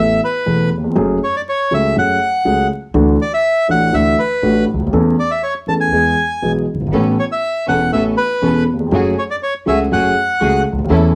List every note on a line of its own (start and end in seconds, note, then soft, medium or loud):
0.00 0.17 A1 soft
0.00 0.17 A2 soft
0.00 0.17 E3 soft
0.00 0.17 A3 soft
0.00 0.17 B3 soft
0.00 0.17 A4 soft
0.00 0.21 E5 medium
0.24 0.70 B4 medium
0.46 0.67 E1 soft
0.46 0.68 E1 soft
0.46 0.67 E2 soft
0.46 0.67 E3 soft
0.46 0.67 A3 soft
0.46 0.67 B3 soft
0.46 0.68 A4 soft
0.78 0.84 D#2 soft
0.84 0.90 E2 soft
0.91 0.97 F2 soft
0.95 1.17 F#1 medium
0.95 1.17 F#2 medium
0.95 1.17 F#3 medium
0.95 1.17 A3 soft
0.95 1.17 C#4 soft
0.95 1.17 G#4 medium
1.24 1.35 C#5 medium
1.36 1.41 D5 medium
1.49 1.73 C#5 medium
1.71 1.92 C#2 soft
1.71 1.92 C#3 soft
1.71 1.92 F#3 soft
1.71 1.92 A3 soft
1.71 1.92 C#4 soft
1.71 1.92 G#4 soft
1.71 1.96 E5 medium
1.96 2.17 F#1 soft
1.96 2.17 F#2 soft
1.96 2.17 F#3 soft
1.96 2.17 A3 soft
1.96 2.17 C#4 soft
1.96 2.17 G#4 soft
1.96 2.68 F#5 medium
2.45 2.66 C#2 soft
2.45 2.66 C#3 soft
2.45 2.66 F#3 soft
2.45 2.66 A3 soft
2.45 2.66 C#4 soft
2.45 2.66 G#4 soft
2.94 3.15 D2 medium
2.94 3.15 D3 medium
2.94 3.15 E3 medium
2.94 3.15 A3 medium
2.94 3.15 D4 soft
2.94 3.16 F#4 medium
3.22 3.32 D5 medium
3.34 3.67 E5 medium
3.68 3.89 A1 soft
3.68 3.89 A2 soft
3.68 3.89 E3 soft
3.68 3.89 A3 soft
3.68 3.89 D4 soft
3.68 3.89 F#4 soft
3.68 3.95 F#5 medium
3.92 4.14 D2 soft
3.92 4.14 D3 soft
3.92 4.14 E3 soft
3.92 4.14 A3 soft
3.92 4.14 D4 soft
3.92 4.14 F#4 soft
3.92 4.19 E5 medium
4.19 4.65 B4 medium
4.42 4.63 A1 soft
4.42 4.64 A1 soft
4.42 4.64 A2 soft
4.42 4.64 E3 soft
4.42 4.64 A3 soft
4.42 4.64 D4 soft
4.42 4.64 F#4 soft
4.74 4.78 C#2 soft
4.74 4.80 C#2 soft
4.79 4.86 D2 soft
4.87 4.92 D#2 medium
4.87 4.93 D#2 medium
4.93 5.13 E2 medium
4.93 5.14 E2 medium
4.93 5.14 E3 medium
4.93 5.14 A3 soft
4.93 5.14 C#4 soft
4.93 5.14 A4 medium
5.19 5.31 D5 medium
5.31 5.42 E5 medium
5.43 5.54 C#5 medium
5.67 5.88 E2 soft
5.67 5.88 E3 soft
5.67 5.88 A3 soft
5.67 5.88 C#4 soft
5.67 5.88 A4 soft
5.67 5.74 A5 medium
5.81 6.52 G#5 medium
5.92 6.13 E2 soft
5.92 6.13 E3 soft
5.92 6.13 G#3 soft
5.92 6.14 B3 soft
5.92 6.13 G#4 soft
6.42 6.64 B1 soft
6.42 6.64 B2 soft
6.42 6.64 E3 soft
6.42 6.64 G#3 soft
6.42 6.64 B3 soft
6.42 6.64 G#4 soft
6.74 6.80 F#1 soft
6.74 6.81 F#1 soft
6.80 6.86 G1 soft
6.80 6.87 G1 soft
6.86 6.92 G#1 medium
6.86 6.93 G#1 soft
6.93 7.14 A1 medium
6.93 7.14 A2 medium
6.93 7.14 E3 medium
6.93 7.14 B3 medium
6.93 7.14 B3 soft
6.93 7.14 C#4 soft
6.93 7.14 A4 medium
7.19 7.25 C#5 medium
7.32 7.66 E5 medium
7.68 7.89 E1 soft
7.68 7.89 E2 soft
7.68 7.89 E3 soft
7.68 7.89 B3 soft
7.68 7.89 C#4 soft
7.68 7.89 A4 soft
7.68 7.91 F#5 medium
7.92 8.13 A1 soft
7.92 8.14 A1 soft
7.92 8.14 A2 soft
7.92 8.13 E3 soft
7.92 8.13 B3 soft
7.92 8.13 C#4 soft
7.92 8.14 C#4 soft
7.92 8.14 A4 soft
7.92 8.04 E5 medium
8.17 8.64 B4 medium
8.42 8.63 E1 soft
8.42 8.64 E1 soft
8.42 8.63 E2 soft
8.42 8.63 E3 soft
8.42 8.63 B3 soft
8.42 8.63 C#4 soft
8.42 8.64 C#4 soft
8.42 8.64 A4 soft
8.74 8.80 D#2 soft
8.80 8.86 E2 soft
8.87 8.93 F2 soft
8.91 9.13 F#1 medium
8.91 9.13 F#2 medium
8.91 9.13 F#3 medium
8.91 9.13 A3 soft
8.91 9.13 A3 medium
8.91 9.13 C#4 soft
8.91 9.13 F#4 medium
8.91 9.13 G#4 medium
9.19 9.24 C#5 soft
9.31 9.36 D5 medium
9.43 9.54 C#5 medium
9.66 9.88 C#2 soft
9.66 9.88 C#3 soft
9.66 9.87 F#3 soft
9.66 9.88 A3 soft
9.66 9.88 C#4 soft
9.66 9.88 F#4 soft
9.66 9.88 G#4 soft
9.66 9.79 E5 medium
9.91 10.13 F#1 soft
9.91 10.13 F#2 soft
9.91 10.13 F#3 soft
9.91 10.12 A3 soft
9.91 10.13 A3 soft
9.91 10.13 C#4 soft
9.91 10.12 F#4 soft
9.91 10.12 G#4 soft
9.91 10.13 G#4 soft
9.91 10.63 F#5 medium
10.41 10.62 C#2 medium
10.41 10.62 C#2 soft
10.41 10.62 C#3 soft
10.41 10.62 F#3 soft
10.41 10.62 A3 soft
10.41 10.62 C#4 soft
10.41 10.62 F#4 soft
10.41 10.62 G#4 soft
10.72 10.78 C#2 soft
10.79 10.84 D2 soft
10.79 10.85 D2 soft
10.85 10.89 D#2 medium
10.85 10.91 D#2 medium
10.90 11.11 E2 medium
10.90 11.11 E3 medium
10.90 11.11 A3 soft
10.90 11.11 C#4 medium
10.90 11.11 E4 medium
10.90 11.11 A4 medium